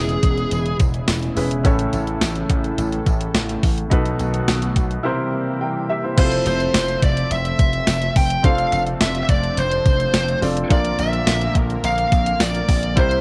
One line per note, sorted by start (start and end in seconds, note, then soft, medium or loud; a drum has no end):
0.00 0.15 E1 loud
0.00 3.87 C#3 medium
0.00 0.19 E3 medium
0.00 1.61 E3 medium
0.00 1.61 G#3 medium
0.00 1.62 B3 medium
0.00 1.32 C#4 medium
0.00 1.32 E4 medium
0.00 3.87 E4 medium
0.00 0.76 G#4 medium
0.00 1.33 G#4 medium
0.00 1.33 B4 medium
0.09 closed hi-hat medium
0.23 0.44 E1 loud
0.23 kick medium
0.23 closed hi-hat medium
0.23 tambourine soft
0.38 closed hi-hat soft
0.51 0.72 E1 loud
0.51 closed hi-hat medium
0.51 tambourine soft
0.66 closed hi-hat medium
0.80 1.00 E1 loud
0.80 kick loud
0.80 closed hi-hat medium
0.80 tambourine medium
0.94 closed hi-hat medium
1.08 1.29 E1 loud
1.08 snare loud
1.08 closed hi-hat medium
1.08 tambourine medium
1.23 closed hi-hat medium
1.36 1.65 E1 medium
1.36 1.62 C#4 medium
1.36 1.63 E4 medium
1.36 1.65 G#4 medium
1.36 1.65 B4 medium
1.36 open hi-hat medium
1.36 tambourine soft
1.51 closed hi-hat medium
1.63 1.85 A1 loud
1.63 2.46 A2 medium
1.63 3.89 E3 medium
1.63 5.01 A3 medium
1.63 3.87 C#4 medium
1.63 3.87 E4 medium
1.63 3.89 A4 medium
1.63 3.87 A4 medium
1.63 3.88 C#5 medium
1.63 kick loud
1.63 closed hi-hat medium
1.63 tambourine soft
1.79 closed hi-hat medium
1.93 2.14 A1 loud
1.93 closed hi-hat medium
1.93 tambourine soft
2.07 closed hi-hat medium
2.21 2.42 A1 loud
2.21 snare loud
2.21 closed hi-hat medium
2.21 tambourine medium
2.36 closed hi-hat medium
2.50 2.70 A1 loud
2.50 kick medium
2.50 closed hi-hat medium
2.64 closed hi-hat soft
2.78 2.98 A1 loud
2.78 closed hi-hat medium
2.78 tambourine soft
2.92 closed hi-hat medium
3.06 3.27 A1 loud
3.06 kick medium
3.06 closed hi-hat medium
3.06 tambourine soft
3.21 closed hi-hat medium
3.35 3.55 A1 loud
3.35 snare loud
3.35 closed hi-hat medium
3.35 tambourine medium
3.49 closed hi-hat medium
3.63 3.83 A1 medium
3.63 kick medium
3.63 open hi-hat medium
3.63 tambourine soft
3.78 closed hi-hat medium
3.90 4.12 B1 loud
3.90 4.72 B2 medium
3.90 5.03 D#3 medium
3.90 5.03 F#3 medium
3.90 5.03 B3 medium
3.90 5.02 D#4 medium
3.90 5.02 F#4 medium
3.90 5.03 F#4 medium
3.90 5.02 A4 medium
3.90 5.03 B4 medium
3.90 kick loud
3.90 closed hi-hat medium
4.06 closed hi-hat medium
4.19 4.40 B1 loud
4.19 closed hi-hat medium
4.19 tambourine medium
4.34 closed hi-hat soft
4.48 4.68 B1 loud
4.48 snare loud
4.48 closed hi-hat medium
4.48 tambourine medium
4.62 closed hi-hat medium
4.76 4.96 B1 medium
4.76 kick medium
4.76 closed hi-hat medium
4.76 tambourine soft
4.91 closed hi-hat soft
5.03 5.85 C3 medium
5.03 6.17 E3 medium
5.03 6.17 G3 medium
5.03 6.17 A#3 medium
5.03 6.17 C4 medium
5.03 5.59 E4 medium
5.03 5.60 G4 medium
5.03 6.17 G4 medium
5.03 5.60 A#4 medium
5.03 5.61 C5 medium
5.61 5.88 A#4 medium
5.61 5.88 G5 medium
5.89 6.03 G4 medium
5.89 6.03 E5 medium
6.04 6.15 E4 medium
6.04 6.17 C5 medium
6.16 6.38 F1 loud
6.16 8.42 C3 medium
6.16 12.93 F3 medium
6.16 10.66 A3 medium
6.16 8.39 C4 medium
6.16 12.93 C4 medium
6.16 8.40 E4 medium
6.16 8.40 F4 medium
6.16 6.24 G4 soft
6.16 8.41 C5 medium
6.16 6.46 C5 medium
6.16 8.42 E5 medium
6.16 kick loud
6.16 closed hi-hat medium
6.16 crash loud
6.25 8.43 A4 medium
6.32 closed hi-hat medium
6.46 6.66 F1 loud
6.46 6.99 C5 medium
6.46 closed hi-hat medium
6.46 tambourine medium
6.60 closed hi-hat medium
6.74 6.95 F1 loud
6.74 snare loud
6.74 closed hi-hat medium
6.74 tambourine medium
6.88 closed hi-hat medium
7.02 7.23 F1 medium
7.02 7.32 D5 medium
7.02 kick medium
7.02 closed hi-hat medium
7.02 tambourine soft
7.17 closed hi-hat soft
7.31 7.51 F1 loud
7.31 8.12 E5 loud
7.31 closed hi-hat loud
7.31 tambourine soft
7.45 closed hi-hat medium
7.59 7.80 F1 loud
7.59 kick loud
7.59 closed hi-hat medium
7.59 tambourine soft
7.73 closed hi-hat medium
7.87 8.08 F1 loud
7.87 snare loud
7.87 closed hi-hat medium
7.87 tambourine medium
8.02 closed hi-hat medium
8.16 8.36 F1 loud
8.16 8.43 G5 loud
8.16 kick loud
8.16 open hi-hat medium
8.16 tambourine medium
8.30 closed hi-hat medium
8.43 8.65 F1 loud
8.43 10.68 C3 medium
8.43 10.38 C4 medium
8.43 10.38 D4 medium
8.43 10.68 D4 medium
8.43 10.38 F4 medium
8.43 10.38 A4 medium
8.43 10.39 C5 medium
8.43 8.72 F5 loud
8.43 kick loud
8.43 closed hi-hat medium
8.58 closed hi-hat medium
8.72 8.93 F1 loud
8.72 8.81 F5 loud
8.72 closed hi-hat medium
8.72 tambourine soft
8.87 closed hi-hat medium
9.01 9.21 F1 loud
9.01 9.22 E5 loud
9.01 snare loud
9.01 closed hi-hat medium
9.01 tambourine medium
9.15 closed hi-hat medium
9.23 9.29 E5 medium
9.29 9.49 F1 loud
9.29 9.59 D5 medium
9.29 kick medium
9.29 closed hi-hat medium
9.29 tambourine soft
9.43 closed hi-hat soft
9.57 9.78 F1 loud
9.57 10.39 C5 medium
9.57 closed hi-hat medium
9.57 tambourine soft
9.71 closed hi-hat medium
9.86 10.06 F1 loud
9.86 kick loud
9.86 closed hi-hat medium
9.86 tambourine medium
10.00 closed hi-hat medium
10.14 10.34 F1 loud
10.14 snare loud
10.14 closed hi-hat medium
10.14 tambourine medium
10.28 closed hi-hat medium
10.41 10.63 F1 loud
10.41 10.70 C4 medium
10.41 10.68 D4 medium
10.41 10.69 F4 medium
10.41 10.71 A4 medium
10.41 10.70 D5 medium
10.41 open hi-hat medium
10.41 tambourine soft
10.57 closed hi-hat medium
10.69 10.91 A#1 loud
10.69 11.51 A#2 medium
10.69 12.95 D3 medium
10.69 12.92 A#3 medium
10.69 13.21 A#3 medium
10.69 12.92 D4 medium
10.69 12.93 F4 medium
10.69 12.95 A#4 medium
10.69 12.93 A#4 medium
10.69 12.93 D5 medium
10.69 11.00 D5 loud
10.69 kick loud
10.69 closed hi-hat medium
10.69 tambourine soft
10.85 closed hi-hat medium
10.99 11.19 A#1 loud
10.99 11.52 E5 loud
10.99 closed hi-hat medium
10.99 tambourine medium
11.13 closed hi-hat medium
11.27 11.47 A#1 loud
11.27 snare loud
11.27 closed hi-hat medium
11.27 tambourine medium
11.41 closed hi-hat medium
11.55 11.76 A#1 loud
11.55 kick medium
11.55 closed hi-hat medium
11.70 closed hi-hat soft
11.84 12.04 A#1 loud
11.84 12.41 F5 loud
11.84 closed hi-hat medium
11.84 tambourine medium
11.98 closed hi-hat medium
12.12 12.32 A#1 loud
12.12 kick loud
12.12 closed hi-hat medium
12.12 tambourine medium
12.26 closed hi-hat medium
12.40 12.61 A#1 loud
12.40 12.99 D5 medium
12.40 snare loud
12.40 closed hi-hat medium
12.40 tambourine medium
12.55 closed hi-hat medium
12.69 12.97 A#1 medium
12.69 kick loud
12.69 open hi-hat medium
12.69 tambourine soft
12.83 closed hi-hat medium
12.96 13.17 C2 loud
12.96 13.21 C3 medium
12.96 13.21 G3 medium
12.96 13.21 C4 medium
12.96 13.21 E4 medium
12.96 13.21 G4 medium
12.96 13.21 A#4 medium
12.96 13.21 C5 loud
12.96 13.21 C5 medium
12.96 13.21 E5 medium
12.96 kick loud
12.96 closed hi-hat medium
12.96 tambourine soft
13.11 closed hi-hat medium